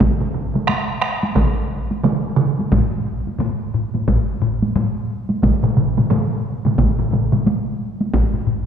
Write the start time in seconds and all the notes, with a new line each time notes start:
0.00 taiko, taiko mid, taiko high
0.20 taiko mid
0.34 taiko mid
0.54 taiko mid, taiko high
0.67 taiko rim, taiko high
1.01 taiko rim
1.23 taiko high
1.35 taiko, taiko mid, taiko high
1.91 taiko high
2.03 taiko mid, taiko high
2.37 taiko mid
2.59 taiko high
2.72 taiko, taiko low-mid, taiko high
3.27 taiko high
3.40 taiko low-mid, taiko high
3.74 taiko low-mid
3.94 taiko low-mid, taiko high
4.08 taiko, taiko low-mid, taiko high
4.42 taiko low-mid
4.62 taiko high
4.76 taiko low-mid, taiko high
5.30 taiko high
5.43 taiko, taiko low-mid, taiko mid, taiko high
5.63 taiko low-mid, taiko mid
5.77 taiko low-mid, taiko mid
5.97 taiko low-mid, taiko mid, taiko high
6.10 taiko low-mid, taiko mid, taiko high
6.65 taiko low-mid, taiko mid, taiko high
6.78 taiko, taiko low-mid, taiko mid, taiko high
6.99 taiko low-mid, taiko mid
7.12 taiko low-mid, taiko mid, taiko high
7.32 taiko low-mid, taiko mid, taiko high
7.46 taiko high
8.01 taiko high
8.13 taiko, taiko low-mid, taiko high
8.34 taiko low-mid
8.47 taiko low-mid